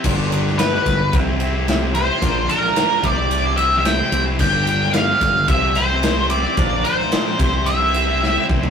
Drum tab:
CC |x---------------|----------------|x---------------|----------------|
RD |--x-x-x-x-x-x-x-|x-x-x-x-x-x-x-x-|--x-x-x-x-x-x-x-|x-x-x-x-x-x-----|
SD |---oooo-----o---|---ooo------o---|---oo-o-----o---|---ooo------o---|
FT |----------------|----------------|----------------|---------------o|
BD |o-----o-o-------|o-----o---------|o-----o-o-------|o-----o-------o-|